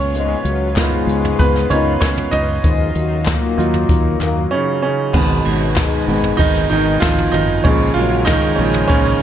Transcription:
Already playing: C#2 C#3 B3 C#4 F4 C#5
0.15 G#2 G#3, closed hi-hat
0.45 C#2 F#2 F#3, closed hi-hat
0.76 G#2 G#3 B3 D#4 F4, kick, snare, clap, closed hi-hat
1.07 C#2, closed hi-hat
1.25 floor tom
1.39 C#2 B3 B4, kick, closed hi-hat
1.56 snare
1.70 C#2 D#3 B3 C#4 D#4 F4 C#5, closed hi-hat, floor tom
2.00 C#2 C#4 C#5, kick, snare, clap, closed hi-hat
2.18 floor tom
2.31 C#2 D#4 D#5, closed hi-hat, floor tom
2.64 D#2 G#2 F#3 G#3 D#4, kick, closed hi-hat
2.95 D#2 F#2 F#3, closed hi-hat
3.25 A#2 A#3, kick, snare, clap, closed hi-hat
3.57 D#2 F#3 D#4 F4, closed hi-hat
3.74 floor tom
3.89 D#2, kick, closed hi-hat
4.20 D#2 A#2 A#3, clap, closed hi-hat, floor tom
4.51 C#3 C#4
4.82 C#3 C#4
5.14 G#1 G#2 B2 D#3 G#3 B3 D#4 B4 G#5, kick, crash
5.45 G#1 F#2 F#3, ride
5.76 G#2 G#3, kick, snare, clap, ride
6.07 G#1 D#3 G#3 B3, ride
6.24 floor tom
6.37 G#1 D#3 D#4, kick, ride
6.55 snare
6.70 G#1 D#3 D#4, ride
7.00 G#1 F3 F4, kick, snare, clap, ride
7.19 floor tom
7.32 G#1 D#3 D#4, floor tom, ride
7.64 A#1 G#2 C#3 F3 G#3 C#4 A#4 G#5, kick, ride
7.94 A#1 F#2 F#3 G#3 F4, ride
8.25 G#2 D#3 G#3 D#4, kick, snare, clap, ride
8.56 A#1 C#3 F3 G#3 C#4, ride
8.74 floor tom
8.88 A#1 C#3 C#4, kick, ride

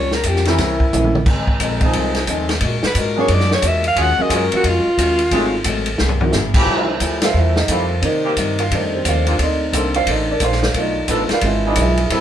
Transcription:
Already playing: C#2 G2 F3 A#3 C#4 C#5
0.11 A#4, snare
0.23 F2 G2 F3, kick, hi-hat pedal, ride
0.28 A#3 C#4 G4
0.36 snare
0.45 E3 A#3 C4 C#4 G4 A#4, snare, ride
0.50 E4
0.58 C2 C3 E3 A#3 C#4, kick, snare, ride
0.80 kick
0.93 A#1 C3 E3 A#3 C4 C#4 E4, hi-hat pedal, mid tom
1.04 mid tom
1.15 mid tom
1.26 G#1 F2 D#3 G#3 C4, kick, crash
1.47 kick
1.60 A#1 F2 D#3 G#3 C4, kick, hi-hat pedal, ride
1.81 F3 G#3 C4 D#4 G#4, kick, ride
1.93 C2 F2 D#3 G#3 C4, kick, ride
2.15 snare, ride
2.27 D#2 F2 D#3 F3 G#3 C4 D#4 G#4, kick, hi-hat pedal, ride
2.49 snare, ride
2.60 A#2 G#3 D4, kick, ride
2.65 F#4
2.83 muted upright bass stroke, snare
2.87 B4
2.95 G#2 A#2 G#3 D4 F#4, kick, hi-hat pedal, ride
3.00 A#4
3.16 F#3 A#3 C#4 D4 G#4
3.20 C#5
3.28 F#2 A#2 G#3 D4 F#4, kick, ride
3.34 D5
3.40 snare
3.51 C#5, snare
3.62 E2 A#2 G#3 D4 F#4, kick, hi-hat pedal, ride
3.67 E5
3.84 F5, ride
3.95 D#2 D#3 F#3 G#3 C#4 F4 F#4 G#4, kick, ride
4.01 F#5
4.18 F#3 A#3 C#4 F4 G#4 D#5, muted upright bass stroke
4.30 F#2 D#3 F#3 G#3 C#4 F4 F#4 G#4, kick, hi-hat pedal, ride
4.37 A#4
4.52 F#3 A#3 C#4 F4 A#4, muted upright bass stroke, ride
4.56 F#4
4.63 F2 D#3 G#3 C#4 F#4, kick, ride
4.69 F4
4.86 muted upright bass stroke
4.98 D#2 D#3 G#3 C#4 F#4, kick, hi-hat pedal, ride
5.18 ride
5.31 G#1 G#2 F#3 A3 C4 D#4 G#4, kick, ride
5.64 A1 G#2 F#3 A3 C4, kick, hi-hat pedal, ride
5.86 ride
5.98 C2 C3 A#3 E4 G#4, snare
6.09 floor tom
6.21 E3 A#3 C4 D#4 F#4, floor tom
6.32 G#1 C3 A#3 E4 G#4, snare, hi-hat pedal
6.54 F3 A3 E4 G4, kick, crash
6.66 C2 F3 A3 E4 G4 E5, kick
6.71 E4 A4 C5
7.00 D2 F3 A3 E4 G4, kick, hi-hat pedal, ride
7.22 G3 A3 F4 A4 C5 E5 F5, snare, ride
7.34 E2 F3 A3 E4 G4 A4 E5, kick
7.38 E4
7.56 D#4 D#5, snare
7.68 F2 F3 A3 E4 F4 G4 A4 C5 F5, kick, hi-hat pedal, ride
8.01 C3 D#3 A#3 D#4 D5, kick, ride
8.05 D#4 G4 A#4 C5 D#5
8.24 D#3 A#3 C4 G4
8.37 G2 C3 A#3 D#4 G4, kick, hi-hat pedal, ride
8.58 F4 F5, ride
8.71 F2 D#3 G3 A3 D4 D#5, kick, ride
8.75 D#4 A4 C5
8.95 C4 G4 A4 C5
9.05 D#2 F2 D#3 A3 D4 F5, kick, hi-hat pedal, ride
9.09 F4 C5 D5
9.26 D3 A#3 C4 F4, ride
9.39 D2 A3 A#3 C4 D4 A4 C5 D5, kick, ride
9.43 D#4 D#5
9.73 C2 D3 A#3 C4 D4 A4 C5, kick, hi-hat pedal, ride
9.94 F4 C5 D5 F5, ride
10.07 A1 A#3 D4 A4 C5 D#5, kick, ride
10.11 D#4
10.30 D4 A4 A#4 D5
10.40 A#1 A#3 D4 A4 C5, kick, hi-hat pedal, ride
10.44 F4 C5 D5 F5
10.52 snare
10.63 snare
10.74 B1 B2 A3 D4 F4 D5, kick, ride
10.79 D#4 D#5
11.08 A1 B2 F3 A3 B3 D4 F4 A4, kick, hi-hat pedal, ride
11.29 D5 F5, muted upright bass stroke, snare, ride
11.33 F4 B4
11.41 G#1 E3 G#3 D4 F4, kick, ride
11.46 E4 G#4 B4 E5
11.65 F3 D4 D#4 E4 G#4 D#5
11.75 B1 E3 G#3 D4 F4, kick, hi-hat pedal, ride
11.81 E4 G#4 B4 E5
11.97 ride
12.10 A1 A2 G3 C4 E4 A4, kick, ride

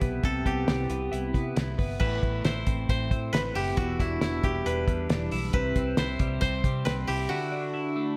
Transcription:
Already playing: C3 G3 E4 G4 A4
0.01 B1 B3, kick, closed hi-hat
0.23 C2 C3 A4, kick, closed hi-hat
0.45 C2 B3 G4, kick, closed hi-hat
0.68 C2 G4, snare, closed hi-hat
0.90 C2 B3, closed hi-hat
1.12 C2 E4, closed hi-hat
1.34 C3 B3, kick, closed hi-hat
1.56 C2 E4, snare, closed hi-hat
1.78 G1 B3, kick, open hi-hat
2.00 A1 A2 E4 B4, kick, crash
2.23 A1, kick, closed hi-hat
2.44 A1 E4 C5, snare, closed hi-hat
2.67 A1 C4, kick, closed hi-hat
2.89 A1 C5, kick, closed hi-hat
3.11 A2 C4, kick, closed hi-hat
3.33 A1 B3 B4, snare, closed hi-hat
3.55 F#1 E4 G4, open hi-hat
3.77 E1 E2 E4 F#4, kick, closed hi-hat
3.99 E1 D4 E4, kick, closed hi-hat
4.21 E1 E4, snare, closed hi-hat
4.43 E1 G3 G4, kick, closed hi-hat
4.66 E1 D4 B4, closed hi-hat
4.88 E2 G3, kick, closed hi-hat
5.10 E1 D4, snare, closed hi-hat
5.31 B1 E4, open hi-hat
5.53 C2 C3 E4 B4, kick, closed hi-hat
5.76 C2 C4, kick, closed hi-hat
5.97 C2 E4 C5, snare, closed hi-hat
6.19 C2 G3, kick, closed hi-hat
6.41 C2 C4 C5, kick, closed hi-hat
6.64 C3 G3, kick, closed hi-hat
6.85 C2 C4 B4, snare, closed hi-hat
7.07 C2 E4 G4, open hi-hat
7.29 D3 E4 F#4
7.52 D4
7.74 E4
7.96 A3

